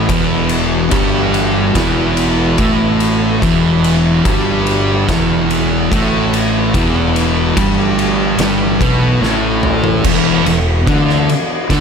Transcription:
Already playing: E3 B3 F#4
0.09 E1 E2 E3, kick, ride
0.49 ride
0.91 G1 G2 G3, kick, ride
1.34 ride
1.75 E1 E2 E3, kick, snare, ride
2.17 ride
2.58 A1 A2 A3, kick, ride
3.00 ride
3.41 E1 E2 E3 A3, kick, ride
3.84 ride
4.25 G1 G2 G3, kick, ride
4.67 ride
5.08 E1 E2 E3, kick, snare, ride
5.51 ride
5.91 A1 A2 A3, kick, ride
6.34 ride
6.74 E1 E2 E3, kick, ride
7.16 ride
7.57 G1 G2 G3, kick, ride
7.99 ride
8.39 G1 G2 G3, snare, ride
8.80 B1 B2 B3, kick, ride
9.21 A1 A2 A3, snare
9.63 mid tom
9.84 floor tom
10.04 E1 E2 E3 B3 F#4, kick, crash
10.45 E1 E2, ride
10.87 D2 D3 D4, kick, ride
11.09 snare
11.29 ride
11.70 D2 D3 D4, kick, snare, ride

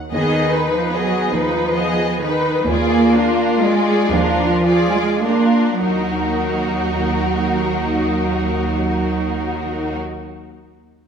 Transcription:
0.11 D#2 D#3 B3 G#4 D#5
0.51 D#4 B4
0.73 F3
0.92 F#3 B3 G#4 D#5
1.32 D#2 F3 D#4 B4
1.74 B3 G#4 D#5
2.21 D#3 D#4 B4
2.67 D#2 A#3 F4 G#4 D5
3.14 D4 F4 A#4
3.61 G#3 F4 G#4 D5
4.10 D#2 F3 D4 F4 A#4
4.63 F4 D5
4.69 G#4
4.93 G#3
5.22 A#3 D4 A#4
5.27 F4
5.81 D#2 F#3 D#4 A#4
5.86 F#4

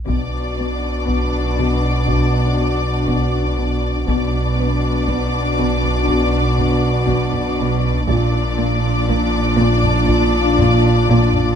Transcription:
0.08 B1 B2 D4 F#4 D5 D6, taiko
0.58 B3
1.08 B3, taiko
1.58 B2
2.08 B2, taiko
2.58 B2
3.08 B2, taiko
3.59 B2
4.07 B1 B2 D4 F#4 D5 D6, taiko
4.59 B3
5.08 B3, taiko
5.59 B2
5.83 taiko low-mid
6.08 B2, taiko
6.58 B2, taiko low-mid
7.08 B2, taiko
7.33 taiko low-mid
7.59 B2
8.08 A#1 A#2 D4 F4 D5 D6, taiko
8.59 A#3
9.09 A#3, taiko
9.58 A#2
9.84 taiko low-mid
10.09 A#2, taiko
10.59 A#2, taiko low-mid
11.08 A#2, taiko
11.34 taiko low-mid

